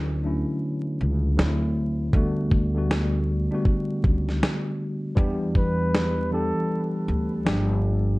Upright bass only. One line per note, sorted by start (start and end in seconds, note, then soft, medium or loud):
0.00 0.43 D2 medium
1.01 1.36 C#2 medium
1.39 2.10 D2 loud
2.14 3.47 D2 medium
4.05 4.40 C#2 medium
5.18 6.51 E2 loud
7.08 7.43 D2 medium
7.46 8.18 G1 medium